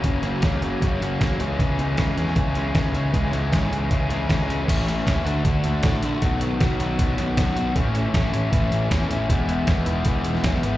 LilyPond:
<<
  \new Staff \with { instrumentName = "Clean electric guitar" } { \clef bass \time 4/4 \key cis \dorian \tempo 4 = 156 <fis, cis fis ais cis'>8 <fis, cis fis ais cis'>8 <fis, cis fis ais cis'>8 <fis, cis fis ais cis'>8 <fis, cis fis ais cis'>8 <fis, cis fis ais cis'>8 <fis, cis fis ais cis'>8 <cis e gis cis'>8 | <cis e gis cis'>8 <cis e gis cis'>8 <cis e gis cis'>8 <cis e gis cis'>8 <cis e gis cis'>8 <cis e gis cis'>8 <cis e gis cis'>8 <cis e gis cis'>8 | <cis e gis cis'>8 <cis e gis cis'>8 <cis e gis cis'>8 <cis e gis cis'>8 <cis e gis cis'>8 <cis e gis cis'>8 <cis e gis cis'>8 <cis e gis cis'>8 | \key a \lydian r8 <e a cis' e'>8 <e a cis' e'>8 r4 <d a d' fis'>8 <d a d' fis'>8 r8 |
r8 <dis b cis' fis'>8 <dis b cis' fis'>8 r4 <dis b cis' fis'>8 <dis b cis' fis'>8 r8 | r8 <e a cis' e'>8 <e a cis' e'>8 r4 <e a cis' e'>8 <e a cis' e'>8 r8 | r8 <e gis b dis'>8 <e gis b dis'>8 r4 <e gis b dis'>8 <e gis b>8 r8 | }
  \new Staff \with { instrumentName = "Distorted electric guitar" } { \clef bass \time 4/4 \key cis \dorian <fis, cis fis ais cis'>8 <fis, cis fis ais cis'>8 <fis, cis fis ais cis'>8 <fis, cis fis ais cis'>8 <fis, cis fis ais cis'>8 <fis, cis fis ais cis'>8 <fis, cis fis ais cis'>8 <cis e gis cis'>8 | <cis e gis cis'>8 <cis e gis cis'>8 <cis e gis cis'>8 <cis e gis cis'>8 <cis e gis cis'>8 <cis e gis cis'>8 <cis e gis cis'>8 <cis e gis cis'>8 | <cis e gis cis'>8 <cis e gis cis'>8 <cis e gis cis'>8 <cis e gis cis'>8 <cis e gis cis'>8 <cis e gis cis'>8 <cis e gis cis'>8 <cis e gis cis'>8 | \key a \lydian <a, e a cis' e'>8 <a cis' e'>8 <e a cis' e'>8 <d a d' fis'>8 <d a d' fis'>4 <d a d' fis'>8 <a d' fis'>8 |
<b, dis fis b fis'>8 <fis b fis'>8 <dis fis b fis'>8 <fis b fis'>8 <b, dis fis b fis'>4 <dis fis b fis'>8 <fis b fis'>8 | <a, e a cis' e'>8 <a cis' e'>8 <e a cis' e'>8 <a cis' e'>8 <a, e a cis' e'>4 <e a cis' e'>8 <a cis' e'>8 | <e gis b e'>8 <gis b e'>8 <e gis b e'>8 <gis b e'>8 <e gis b e'>4 <e gis b e'>8 <gis b e'>8 | }
  \new Staff \with { instrumentName = "Picked electric bass" } { \clef bass \time 4/4 \key cis \dorian fis,,8 fis,,8 cis,8 fis,,8 fis,,8 fis,,8 fis,,8 cis,8 | cis,8 cis,8 cis,8 e,8 cis,8 cis,8 cis,8 cis,8 | cis,8 cis,8 gis,8 cis,8 cis,8 cis,8 cis,4 | \key a \lydian a,,4 dis,8 d,8 d,8 d,8 a,8 ais,,8 |
b,,4 b,,8 b,,8 b,,8 b,,8 fis,8 b,,8 | a,,4 a,,8 a,,8 a,,8 a,,8 e,8 a,,8 | e,,4 e,,8 e,,8 e,,8 e,,8 b,,8 gis,,8 | }
  \new DrumStaff \with { instrumentName = "Drums" } \drummode { \time 4/4 <hh bd>8 hh8 <hh bd sn>8 hh8 <hh bd>8 hh8 <hh bd sn>8 hh8 | <hh bd>8 hh8 <hh bd sn>8 hh16 sn16 <hh bd>8 hh8 <hh bd sn>8 hh8 | <hh bd>8 hh8 <hh bd sn>8 hh8 <hh bd>8 hh8 <hh bd sn>8 hh8 | <cymc hh bd>8 hh8 <hh bd sn>16 sn16 hh8 <hh bd>8 hh8 <hh bd sn>8 hh8 |
<hh bd>8 hh8 <hh bd sn>16 sn16 hh8 <hh bd>8 hh8 <hh bd sn>8 hh8 | <hh bd>8 hh8 <hh bd sn>16 sn16 hh8 <hh bd>8 hh8 <hh bd sn>8 hh8 | <hh bd>8 hh8 <hh bd sn>16 sn16 hh8 <hh bd>8 hh16 sn16 <hh bd sn>8 hh8 | }
>>